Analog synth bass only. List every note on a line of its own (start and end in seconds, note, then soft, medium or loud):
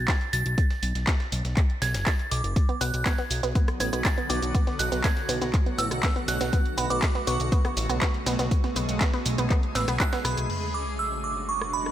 0.33 0.44 B1 medium
0.46 0.56 B1 medium
0.83 0.93 B1 medium
0.95 1.05 B1 medium
1.32 1.43 B1 medium
1.45 1.55 B1 medium
1.82 1.96 B1 medium
1.95 2.05 F#1 medium
2.31 2.42 B1 medium
2.44 2.54 F#1 medium
2.81 2.92 B1 medium
2.94 3.04 B1 medium
3.31 3.41 B1 medium
3.43 3.53 B1 medium
3.80 3.91 A1 medium
3.93 4.03 B1 medium
4.30 4.40 B1 medium
4.42 4.53 B1 medium
4.79 4.90 B1 medium
4.92 5.02 B1 medium
5.29 5.39 B1 medium
5.42 5.52 B1 medium
5.78 5.89 A1 medium
5.91 6.01 B1 medium
6.28 6.39 B1 loud
6.41 6.51 B1 medium
6.78 6.88 B1 medium
6.90 7.01 B1 medium
7.27 7.38 B1 medium
7.40 7.50 B1 medium
7.77 7.87 A1 medium
7.90 8.00 B1 medium
8.26 8.37 B1 loud
8.39 8.49 B1 medium
8.76 8.87 B1 medium
8.89 8.99 B1 medium
9.26 9.36 B1 medium
9.38 9.48 B1 medium
9.75 9.86 A1 medium
9.88 9.98 B1 medium
10.25 10.35 B1 loud
10.37 10.48 B1 medium